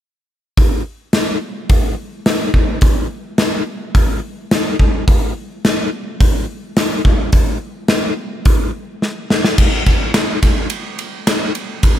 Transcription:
0.57 kick, open hi-hat
1.13 snare, open hi-hat
1.69 kick, open hi-hat
2.26 snare, open hi-hat
2.54 kick
2.81 kick, open hi-hat
3.38 snare, open hi-hat
3.95 kick, open hi-hat
4.51 snare, open hi-hat
4.79 kick
5.08 kick, open hi-hat
5.65 snare, open hi-hat
6.20 kick, open hi-hat
6.77 snare, open hi-hat
7.05 kick
7.32 kick, open hi-hat
7.88 snare, open hi-hat
8.45 kick, open hi-hat
9.02 snare
9.30 snare
9.44 snare
9.58 kick, crash
9.86 kick, ride
10.14 snare, ride
10.43 kick, ride
10.70 ride
10.99 ride
11.27 snare, ride
11.55 ride
11.83 kick, ride

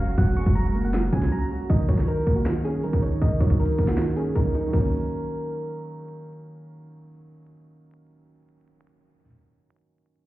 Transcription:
Already playing: F#1 F#3 G#3 A#3 C#4 F#4 A#4
0.00 F#4 F5
0.18 F#1 F#3 F#5, kick, closed hi-hat
0.37 G#3 C#6, closed hi-hat
0.46 F#1, kick
0.55 F#3 A#5, closed hi-hat
0.75 A#3, closed hi-hat
0.84 F1 F#5
0.94 F#3, finger snap, snare, closed hi-hat
0.98 F#1
1.13 C#2 C#4 G#5, kick, closed hi-hat
1.22 snare
1.31 F#3 A#5
1.51 F#4
1.70 D#3 D#5, kick, closed hi-hat
1.89 F#3 C#5, kick, closed hi-hat
1.98 snare
2.07 D#3 A#4, closed hi-hat
2.27 A#3, kick, closed hi-hat
2.36 F#4
2.46 D#3, finger snap, snare, closed hi-hat
2.65 C#4 G#4, closed hi-hat
2.83 D#3 A#4, closed hi-hat
2.93 kick
3.02 D#4 C#5, closed hi-hat
3.21 D#3 D#5, kick, closed hi-hat
3.40 F#3 C#5, kick, closed hi-hat
3.50 kick
3.59 D#3 A#4, closed hi-hat
3.66 closed hi-hat
3.72 closed hi-hat
3.78 A#3, kick, closed hi-hat
3.88 F#4, finger snap, snare
3.97 D#3, finger snap, snare, closed hi-hat
4.16 C#4 G#4, closed hi-hat
4.35 D#3 A#4, kick, closed hi-hat
4.54 D#4, closed hi-hat
4.67 D#3
4.71 F#3 A#3 A#4, kick, crash
4.79 C#4

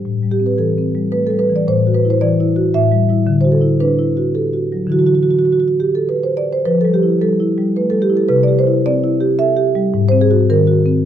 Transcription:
0.05 A2
0.23 G3
0.31 G4
0.40 C4
0.46 B4
0.58 E3 A4
0.78 C4
0.95 G3
1.12 A3 B4
1.27 G3 A4
1.39 B4
1.50 E3
1.56 D5
1.68 A2 C5
1.87 F#4
1.94 B4
2.05 E4
2.10 C5
2.21 E3 D5
2.40 E4
2.56 F#4
2.74 A2 E5
2.92 G3
3.09 G3 E4
3.27 D3
3.41 F#4 C5
3.52 A4
3.61 E4
3.80 D4 B4
3.99 E4
4.17 F#4
4.35 G4 A4
4.54 F#4
4.72 F#3
4.87 D3 E3 E4
4.92 F#4
4.99 F#4
5.06 F#4
5.15 F#4
5.23 F#4
5.30 F#4
5.39 F#4
5.45 F#4
5.53 F#4
5.60 F#4
5.68 F#4
5.80 G4
5.95 A4
6.09 B4
6.23 C5
6.37 D5
6.53 C5
6.65 F3 B4
6.81 G3 A4
6.94 G4
7.03 E4
7.21 G3 A4
7.40 E4
7.58 G3
7.76 A3 B4
7.90 G3 A4
8.02 G4
8.10 E4
8.17 A4
8.29 C3 B4
8.43 D5
8.48 G4
8.59 C5
8.67 E4
8.86 C4 D5
9.04 E4
9.21 G4
9.39 A4 E5
9.57 G4
9.75 G3
9.94 G#2
10.09 C4 C5
10.21 G#4
10.31 F#4
10.50 D#3 A#4
10.67 F#4
10.86 C4

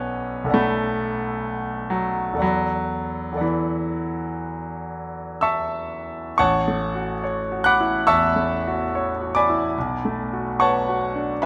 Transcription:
Already playing: B1 B3 C#4 A4 D5 F#5 B5
0.44 B1 A4
0.49 D5 F#5 B5
0.54 A3
1.90 F#3
2.33 E2 A4 D5
2.39 F#3 F#5 B5
3.32 E2 A4
3.37 D5 F#5
3.41 E3 B5
5.41 E5 A5 C#6 E6
6.38 A1 C#5 F#5 A5 C#6
6.68 A3
6.95 F#4
7.24 C#5
7.52 F#4
7.64 F#5 B5 D6 F#6
7.81 E4
8.07 E2 E5 A5 C#6 E6
8.36 A3
8.68 F#4
8.95 C#5
9.22 F#4
9.35 D5 G#5 B5 D6
9.50 E4
9.78 B1
10.05 A3
10.33 F#4
10.60 B4 C#5 F#5 A5 C#6
10.89 F#4
11.15 D4
11.42 B5

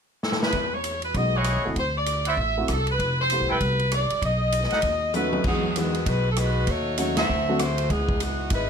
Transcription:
0.23 A4, snare
0.32 snare
0.43 B4, snare
0.52 E2, kick, ride
0.74 C#5
0.84 hi-hat pedal, ride
1.02 B4, ride
1.14 B1 G#3 B3 D#4 F#4 D#5, kick, ride
1.35 E4 G#4 C#5 D#5 F#5
1.44 cross-stick, hi-hat pedal, ride
1.57 E2
1.65 D#2 A3 C4 E4 F#4
1.76 D2 C5, kick, ride
1.98 D5
2.06 hi-hat pedal, ride
2.25 E4 C5 D5 E5 F#5, ride
2.37 A1 E5, kick
2.57 A3 C4 E4 F#4
2.68 C2 A4, cross-stick, hi-hat pedal, ride
2.87 ride
2.91 B4
2.99 F1, kick, ride
3.20 C5
3.30 A3 B3 E4 G4, hi-hat pedal, ride
3.41 B1
3.49 C2 E4 A4 B4 G5
3.60 C2, kick, ride
3.79 ride
3.91 D5, cross-stick, hi-hat pedal, ride
4.10 muted upright bass stroke, ride
4.22 B1, kick, ride
4.26 D#5
4.52 hi-hat pedal, ride
4.63 snare
4.70 D#4 A4 B4 F#5, muted upright bass stroke, snare, ride
4.82 D#2, kick, ride
5.13 A3 C#4 D#4 F#4 B4, hi-hat pedal, high tom
5.33 high tom
5.44 E2 E3 F#3 G#3 B3 D#4 F#4 G#4, kick, crash
5.76 D#3 E3 G#3 B3 D#4 F#4, hi-hat pedal, ride
5.94 ride
6.06 B1 G#3 D#4 F#4 B4, kick, ride
6.32 A4
6.36 G#3 D#4 F#4 B4, cross-stick, hi-hat pedal, ride
6.67 D#2 A3 D#4 F#4 C#5, kick, ride
6.97 F#3 A3 C#4 D#4 F#4 C#5, hi-hat pedal, ride
7.17 C4 F#4 A4 E5, snare, ride
7.29 D2
7.49 F#3 A3 C4 D4 F#4
7.59 A3 E4 F#4 C5, cross-stick, hi-hat pedal, ride
7.78 ride
7.90 C#2 E3 B3 D#4 G#4, kick, ride
8.09 kick
8.20 E3 B3 D#4 F#4, hi-hat pedal, ride
8.50 G#1 G#3 D#4 E4 B4, kick, ride

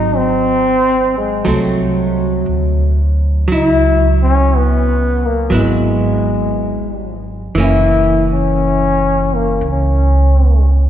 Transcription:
Already playing: G#1 F#3 C4 D#4
0.16 C4
1.17 G#3
1.45 C2 F#3 A3 C4
1.51 F#3
2.46 D2
3.48 C#2 F#3
3.52 E4
4.23 C#4
4.56 B3
5.25 A#3
5.50 G#1 F#3 B3 E4
5.57 G#3
7.55 F#1 E3 A#3
7.59 C#4 E4
8.32 C#4
9.35 A#3
9.61 C#2
9.71 C#4

